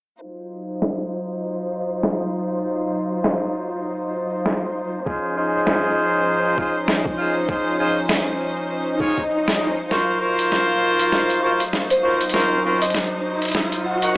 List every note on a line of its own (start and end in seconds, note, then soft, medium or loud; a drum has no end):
0.22 5.03 F#3 medium
0.22 5.03 D#4 medium
0.22 5.03 F4 medium
0.22 5.03 C5 medium
0.82 snare loud
2.03 snare loud
3.24 snare loud
4.46 snare loud
5.06 9.88 F3 medium
5.06 9.88 C#4 medium
5.06 5.34 D#4 medium
5.06 9.88 D#4 medium
5.06 5.34 F4 medium
5.06 5.34 G#4 medium
5.06 5.34 C5 medium
5.06 9.88 C5 medium
5.06 kick loud
5.37 6.55 D#4 loud
5.37 6.55 F4 medium
5.37 6.55 G#4 medium
5.37 6.55 C5 loud
5.67 snare loud
6.58 6.77 D#4 medium
6.58 6.77 F4 medium
6.58 6.77 G#4 medium
6.58 6.77 C5 loud
6.58 kick medium
6.88 snare loud
7.06 kick loud
7.18 7.38 D#4 medium
7.18 7.38 F4 medium
7.18 7.38 G#4 medium
7.18 7.38 C5 medium
7.48 7.75 D#4 medium
7.48 7.75 F4 medium
7.48 7.75 G#4 medium
7.48 7.75 C5 loud
7.48 kick loud
7.79 7.98 D#4 medium
7.79 7.98 F4 medium
7.79 7.98 G#4 medium
7.79 7.98 C5 medium
8.09 snare loud
8.70 swell medium
9.00 9.19 D#4 medium
9.00 9.19 F4 medium
9.00 9.20 G#4 medium
9.00 9.19 C#5 loud
9.00 kick loud
9.18 kick medium
9.48 snare loud
9.91 14.17 F#3 medium
9.91 14.17 D#4 medium
9.91 10.18 F4 medium
9.91 10.18 F#4 medium
9.91 10.18 A#4 medium
9.91 10.18 C5 loud
9.91 14.17 C5 medium
9.91 12.31 F5 medium
9.91 snare soft
9.91 riser medium
10.21 11.39 F4 loud
10.21 11.40 F#4 medium
10.21 11.39 A#4 medium
10.21 11.39 C5 loud
10.39 closed hi-hat medium
10.52 snare soft
10.99 closed hi-hat medium
11.12 snare soft
11.30 closed hi-hat medium
11.42 11.62 F4 medium
11.42 11.62 F#4 medium
11.42 11.62 A#4 medium
11.42 11.62 C5 loud
11.60 closed hi-hat medium
11.73 snare soft
11.90 11.99 C5 medium
11.90 closed hi-hat medium
12.03 12.23 F4 medium
12.03 12.23 F#4 medium
12.03 12.23 A#4 medium
12.03 12.23 C5 medium
12.03 12.15 C5 medium
12.21 closed hi-hat medium
12.29 12.60 F4 medium
12.29 12.60 F#4 medium
12.29 12.60 A#4 medium
12.29 12.60 C5 loud
12.29 closed hi-hat medium
12.34 snare soft
12.40 closed hi-hat soft
12.64 12.83 F4 medium
12.64 12.83 F#4 medium
12.64 12.83 A#4 medium
12.64 12.83 C5 loud
12.82 12.99 D#5 medium
12.82 closed hi-hat medium
12.84 closed hi-hat medium
12.90 closed hi-hat soft
12.94 snare soft
12.94 closed hi-hat soft
13.00 closed hi-hat soft
13.04 closed hi-hat soft
13.42 closed hi-hat soft
13.45 closed hi-hat soft
13.48 closed hi-hat soft
13.51 snare medium
13.51 closed hi-hat medium
13.72 closed hi-hat medium
13.86 14.17 F#5 medium
14.02 14.17 D#4 medium
14.02 14.17 F#4 medium
14.02 14.17 A#4 medium
14.02 14.17 F#5 medium
14.02 closed hi-hat medium